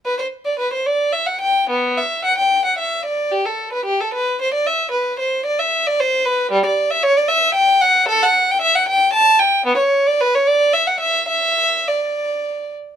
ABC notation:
X:1
M:3/4
L:1/16
Q:1/4=112
K:Bphr
V:1 name="Violin"
B c2 d B c d2 e f g2 | B,2 e2 f g2 f e2 d2 | G A2 B G A B2 c d e2 | B2 c2 d e2 d c2 B2 |
[K:D] G, d2 e c d e2 g2 f2 | A f2 g e f g2 a2 g2 | B, c2 d B c d2 e f e2 | e4 d6 z2 |]